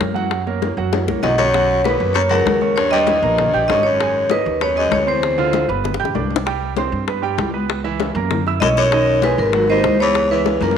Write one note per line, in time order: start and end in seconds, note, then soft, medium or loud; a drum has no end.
0.00 0.72 F#2 medium
0.00 0.10 A#3 medium
0.00 0.10 A#4 medium
0.00 0.10 C#5 medium
0.00 high bongo medium
0.00 low bongo medium
0.00 high conga medium
0.14 0.40 F#3 medium
0.14 0.40 F#4 medium
0.14 0.41 F#5 medium
0.14 high bongo soft
0.14 high conga medium
0.31 high bongo medium
0.31 high conga soft
0.46 0.72 A#3 medium
0.46 0.72 A#4 medium
0.46 0.72 C#5 medium
0.46 high bongo soft
0.46 high conga soft
0.62 high bongo medium
0.62 high conga medium
0.77 1.06 F#2 medium
0.77 1.03 F#3 medium
0.77 1.03 F#4 medium
0.77 1.03 F#5 medium
0.77 high conga soft
0.93 high bongo loud
0.93 high conga loud
1.07 1.22 C#2 medium
1.07 1.20 A#3 medium
1.07 1.21 A#4 medium
1.07 1.21 C#5 medium
1.07 high bongo medium
1.07 high conga medium
1.23 1.94 B1 medium
1.23 1.37 F#2 medium
1.23 1.48 F#3 medium
1.23 1.49 F#4 medium
1.23 1.39 D#5 medium
1.23 1.49 F#5 medium
1.23 low bongo loud
1.23 low conga loud
1.38 1.81 F#2 medium
1.38 1.82 C#5 medium
1.38 low bongo medium
1.38 low conga medium
1.54 1.80 F#3 medium
1.54 1.80 F#4 medium
1.54 1.80 F#5 medium
1.54 high bongo medium
1.54 high conga soft
1.70 high conga soft
1.84 2.13 D#2 medium
1.84 2.10 B3 medium
1.84 2.13 B4 loud
1.84 2.10 B4 medium
1.84 2.11 B5 medium
1.84 high bongo medium
1.84 high conga loud
2.00 2.43 F#2 loud
2.00 high conga soft
2.14 2.22 F#2 medium
2.14 2.28 A#3 medium
2.14 2.28 A#4 medium
2.14 2.22 C#5 loud
2.14 2.29 A#5 medium
2.14 high bongo medium
2.14 high conga soft
2.29 2.73 C#2 medium
2.29 2.56 F#3 medium
2.29 2.56 F#4 medium
2.29 2.78 A#4 medium
2.29 2.56 F#5 medium
2.29 high conga soft
2.45 3.17 D#2 medium
2.45 high bongo medium
2.45 low bongo medium
2.45 high conga medium
2.61 2.87 C#4 medium
2.61 2.87 C#5 medium
2.61 2.87 C#6 medium
2.61 high conga medium
2.76 2.91 G2 medium
2.76 2.91 C#5 medium
2.76 high bongo medium
2.76 high conga soft
2.91 3.66 G2 medium
2.91 3.17 G3 medium
2.91 3.18 G4 medium
2.91 3.65 D#5 loud
2.91 3.18 G5 loud
2.91 high bongo soft
2.91 high conga soft
3.07 high bongo medium
3.07 high conga loud
3.22 3.51 A#1 loud
3.22 3.48 A#3 medium
3.22 3.48 A#4 medium
3.22 3.49 A#5 medium
3.22 high bongo soft
3.22 high conga soft
3.38 high bongo medium
3.38 high conga soft
3.38 low conga medium
3.54 3.68 A#1 medium
3.54 3.66 G4 medium
3.54 3.67 G5 medium
3.54 3.67 G6 medium
3.54 high bongo soft
3.54 high conga soft
3.68 4.41 G#1 medium
3.68 3.84 G2 medium
3.68 3.94 C#4 medium
3.68 3.94 C#5 medium
3.68 3.85 D#5 medium
3.68 3.94 C#6 medium
3.68 high bongo medium
3.68 low bongo medium
3.68 high conga medium
3.83 4.28 F#2 medium
3.83 4.31 C#5 medium
4.00 4.25 G#3 medium
4.00 4.25 G#4 medium
4.00 4.25 G#5 medium
4.00 high bongo medium
4.00 high conga soft
4.15 high conga soft
4.30 4.60 D#2 medium
4.30 4.56 D#4 medium
4.30 4.63 B4 medium
4.30 4.56 D#5 medium
4.30 4.56 D#6 medium
4.30 high bongo medium
4.30 high conga loud
4.45 4.89 D#2 loud
4.45 high conga soft
4.61 4.76 F#2 medium
4.61 4.74 B3 medium
4.61 4.74 B4 medium
4.61 4.78 C#5 medium
4.61 4.74 B5 medium
4.61 high bongo medium
4.61 high conga soft
4.75 4.92 F#2 medium
4.75 5.01 G#3 medium
4.75 5.02 G#4 medium
4.75 4.93 D#5 medium
4.75 5.02 G#5 medium
4.75 high conga soft
4.91 5.63 D2 medium
4.91 5.07 F#2 medium
4.91 5.08 C#5 medium
4.91 high bongo medium
4.91 low bongo medium
4.91 high conga medium
5.07 5.66 E2 medium
5.07 5.32 C4 medium
5.07 5.32 C5 medium
5.07 5.65 C5 medium
5.07 5.33 C6 medium
5.22 high bongo medium
5.22 high conga soft
5.37 5.63 D3 loud
5.37 5.64 F4 loud
5.37 5.64 F5 medium
5.37 high bongo soft
5.37 high conga soft
5.53 high bongo medium
5.53 high conga loud
5.68 5.98 G1 loud
5.68 5.94 B3 medium
5.68 5.94 B4 medium
5.68 5.94 B5 medium
5.68 high bongo soft
5.68 high conga soft
5.84 high bongo medium
5.84 high conga soft
5.84 low conga medium
5.94 high bongo medium
6.00 6.14 A1 medium
6.00 6.12 G4 medium
6.00 6.12 G5 medium
6.00 6.12 G6 medium
6.00 high conga soft
6.05 high bongo medium
6.15 6.86 C2 medium
6.15 6.40 D4 medium
6.15 6.40 D5 medium
6.15 6.41 D6 medium
6.15 high conga medium
6.30 high conga medium
6.36 low bongo loud
6.46 6.71 G3 medium
6.46 6.71 G4 medium
6.46 6.72 G5 medium
6.46 high bongo medium
6.46 high conga soft
6.62 high conga soft
6.77 7.02 C4 medium
6.77 7.03 C5 medium
6.77 7.03 C6 medium
6.77 high bongo medium
6.77 high conga medium
6.92 7.35 G2 medium
6.92 high conga soft
7.08 7.20 B3 medium
7.08 7.21 B4 medium
7.08 7.21 B5 medium
7.08 high bongo medium
7.08 high conga soft
7.22 7.48 G3 medium
7.22 7.48 G4 medium
7.22 7.48 G5 medium
7.22 high conga soft
7.38 8.09 C#2 medium
7.38 high bongo medium
7.38 low bongo medium
7.38 high conga medium
7.54 7.79 B3 medium
7.54 7.79 B4 medium
7.54 7.79 B5 medium
7.69 high bongo medium
7.69 high conga soft
7.84 8.10 E3 loud
7.84 8.10 E4 loud
7.84 8.10 E5 loud
7.84 high bongo soft
7.84 high conga soft
8.00 high bongo medium
8.00 high conga loud
8.15 8.58 F#2 loud
8.15 8.41 A#3 medium
8.15 8.41 A#4 medium
8.15 8.41 A#5 medium
8.15 high bongo soft
8.15 high conga soft
8.31 high bongo medium
8.31 high conga soft
8.31 low conga loud
8.47 8.59 E4 medium
8.47 8.59 E5 medium
8.47 8.60 E6 medium
8.47 high bongo soft
8.47 high conga soft
8.60 9.33 B1 loud
8.60 8.69 F#2 medium
8.60 8.87 C#4 medium
8.60 8.87 C#5 medium
8.60 8.67 D#5 loud
8.60 8.88 C#6 medium
8.60 high bongo medium
8.60 low bongo medium
8.60 high conga medium
8.77 9.20 F#2 medium
8.77 9.20 C#5 loud
8.77 high conga medium
8.92 9.17 D#3 medium
8.92 9.18 D#4 medium
8.92 9.18 D#5 medium
8.92 high bongo medium
8.92 high conga soft
9.22 9.37 D#2 medium
9.22 9.48 G#3 medium
9.22 9.49 G#4 medium
9.22 9.39 B4 loud
9.22 9.49 G#5 medium
9.22 high bongo medium
9.22 high conga loud
9.38 9.81 G#1 loud
9.38 9.68 D#2 medium
9.38 9.70 A#4 medium
9.38 high conga soft
9.53 9.66 F#3 medium
9.53 9.67 F#4 medium
9.53 9.67 F#5 medium
9.53 high bongo medium
9.68 9.98 D#2 medium
9.68 9.94 D#3 medium
9.68 9.95 D#4 loud
9.68 10.01 C5 loud
9.68 9.95 D#5 medium
9.68 high conga soft
9.84 10.55 C#2 medium
9.84 high bongo medium
9.84 low bongo medium
9.84 high conga medium
10.00 10.30 E2 medium
10.00 10.25 B3 medium
10.00 10.25 B4 medium
10.00 10.32 C#5 medium
10.00 10.25 B5 medium
10.15 high bongo medium
10.30 10.60 E2 medium
10.30 10.56 E3 medium
10.30 10.56 E4 loud
10.30 10.60 B4 medium
10.30 10.56 E5 loud
10.30 high bongo soft
10.30 high conga soft
10.46 high bongo medium
10.46 high conga loud
10.61 10.78 C#2 medium
10.61 10.78 F#2 loud
10.61 10.78 A#3 medium
10.61 10.78 A#4 medium
10.61 10.78 A#5 medium
10.61 high bongo soft
10.61 high conga loud
10.71 high conga loud